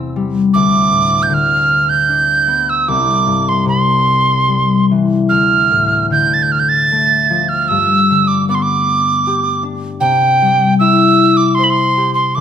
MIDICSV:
0, 0, Header, 1, 3, 480
1, 0, Start_track
1, 0, Tempo, 761421
1, 333, Time_signature, 3, 2, 24, 8
1, 816, Tempo, 789474
1, 1776, Tempo, 806452
1, 4176, Tempo, 779221
1, 7564, End_track
2, 0, Start_track
2, 0, Title_t, "Tin whistle"
2, 0, Program_c, 0, 75
2, 339, Note_on_c, 0, 86, 78
2, 774, Note_on_c, 0, 91, 65
2, 783, Note_off_c, 0, 86, 0
2, 842, Note_on_c, 0, 89, 78
2, 851, Note_off_c, 0, 91, 0
2, 1180, Note_on_c, 0, 91, 72
2, 1189, Note_off_c, 0, 89, 0
2, 1667, Note_on_c, 0, 88, 68
2, 1676, Note_off_c, 0, 91, 0
2, 1782, Note_on_c, 0, 86, 69
2, 1791, Note_off_c, 0, 88, 0
2, 2141, Note_on_c, 0, 84, 58
2, 2150, Note_off_c, 0, 86, 0
2, 2255, Note_off_c, 0, 84, 0
2, 2259, Note_on_c, 0, 84, 55
2, 2956, Note_off_c, 0, 84, 0
2, 3215, Note_on_c, 0, 89, 66
2, 3675, Note_off_c, 0, 89, 0
2, 3708, Note_on_c, 0, 91, 68
2, 3837, Note_on_c, 0, 93, 59
2, 3846, Note_off_c, 0, 91, 0
2, 3890, Note_on_c, 0, 91, 61
2, 3899, Note_off_c, 0, 93, 0
2, 3946, Note_on_c, 0, 89, 62
2, 3954, Note_off_c, 0, 91, 0
2, 3991, Note_on_c, 0, 91, 59
2, 4000, Note_off_c, 0, 89, 0
2, 4046, Note_on_c, 0, 93, 75
2, 4055, Note_off_c, 0, 91, 0
2, 4534, Note_on_c, 0, 89, 63
2, 4543, Note_off_c, 0, 93, 0
2, 4654, Note_on_c, 0, 88, 74
2, 4664, Note_off_c, 0, 89, 0
2, 5020, Note_on_c, 0, 86, 66
2, 5029, Note_off_c, 0, 88, 0
2, 5140, Note_off_c, 0, 86, 0
2, 5151, Note_on_c, 0, 86, 64
2, 5187, Note_on_c, 0, 84, 55
2, 5196, Note_off_c, 0, 86, 0
2, 5234, Note_on_c, 0, 86, 63
2, 5243, Note_off_c, 0, 84, 0
2, 5856, Note_off_c, 0, 86, 0
2, 6085, Note_on_c, 0, 79, 79
2, 6541, Note_off_c, 0, 79, 0
2, 6572, Note_on_c, 0, 88, 97
2, 6926, Note_on_c, 0, 86, 81
2, 6935, Note_off_c, 0, 88, 0
2, 7035, Note_on_c, 0, 84, 84
2, 7045, Note_off_c, 0, 86, 0
2, 7090, Note_on_c, 0, 83, 72
2, 7100, Note_off_c, 0, 84, 0
2, 7129, Note_on_c, 0, 84, 83
2, 7138, Note_off_c, 0, 83, 0
2, 7398, Note_off_c, 0, 84, 0
2, 7402, Note_on_c, 0, 84, 69
2, 7530, Note_on_c, 0, 86, 81
2, 7540, Note_off_c, 0, 84, 0
2, 7564, Note_off_c, 0, 86, 0
2, 7564, End_track
3, 0, Start_track
3, 0, Title_t, "Harp"
3, 0, Program_c, 1, 46
3, 0, Note_on_c, 1, 40, 46
3, 0, Note_on_c, 1, 48, 37
3, 0, Note_on_c, 1, 52, 44
3, 0, Note_on_c, 1, 57, 40
3, 0, Note_on_c, 1, 60, 43
3, 101, Note_on_c, 1, 55, 40
3, 346, Note_on_c, 1, 38, 52
3, 365, Note_off_c, 1, 40, 0
3, 365, Note_off_c, 1, 48, 0
3, 365, Note_off_c, 1, 52, 0
3, 365, Note_off_c, 1, 55, 0
3, 477, Note_off_c, 1, 57, 0
3, 576, Note_on_c, 1, 45, 38
3, 817, Note_on_c, 1, 50, 49
3, 846, Note_off_c, 1, 45, 0
3, 1299, Note_on_c, 1, 62, 39
3, 1534, Note_on_c, 1, 59, 40
3, 1571, Note_off_c, 1, 60, 0
3, 1781, Note_on_c, 1, 36, 50
3, 1805, Note_off_c, 1, 38, 0
3, 1805, Note_off_c, 1, 50, 0
3, 1816, Note_off_c, 1, 59, 0
3, 2008, Note_on_c, 1, 43, 41
3, 2242, Note_on_c, 1, 48, 42
3, 2280, Note_off_c, 1, 43, 0
3, 2733, Note_on_c, 1, 55, 39
3, 2975, Note_off_c, 1, 62, 0
3, 2989, Note_on_c, 1, 52, 37
3, 3227, Note_on_c, 1, 38, 47
3, 3249, Note_off_c, 1, 36, 0
3, 3249, Note_off_c, 1, 48, 0
3, 3249, Note_off_c, 1, 52, 0
3, 3249, Note_off_c, 1, 55, 0
3, 3464, Note_on_c, 1, 45, 36
3, 3699, Note_on_c, 1, 50, 43
3, 3731, Note_off_c, 1, 45, 0
3, 4187, Note_on_c, 1, 57, 41
3, 4420, Note_on_c, 1, 53, 41
3, 4667, Note_on_c, 1, 43, 51
3, 4689, Note_off_c, 1, 38, 0
3, 4689, Note_off_c, 1, 50, 0
3, 4689, Note_off_c, 1, 53, 0
3, 4915, Note_on_c, 1, 50, 43
3, 5151, Note_on_c, 1, 59, 49
3, 5632, Note_on_c, 1, 67, 44
3, 5855, Note_on_c, 1, 62, 41
3, 6086, Note_on_c, 1, 48, 53
3, 6121, Note_off_c, 1, 43, 0
3, 6121, Note_off_c, 1, 50, 0
3, 6122, Note_off_c, 1, 59, 0
3, 6237, Note_off_c, 1, 57, 0
3, 6340, Note_on_c, 1, 55, 46
3, 6579, Note_on_c, 1, 64, 52
3, 7060, Note_on_c, 1, 72, 49
3, 7082, Note_off_c, 1, 67, 0
3, 7298, Note_on_c, 1, 67, 48
3, 7541, Note_on_c, 1, 50, 61
3, 7564, Note_off_c, 1, 48, 0
3, 7564, Note_off_c, 1, 50, 0
3, 7564, Note_off_c, 1, 55, 0
3, 7564, Note_off_c, 1, 62, 0
3, 7564, Note_off_c, 1, 64, 0
3, 7564, Note_off_c, 1, 67, 0
3, 7564, Note_off_c, 1, 72, 0
3, 7564, End_track
0, 0, End_of_file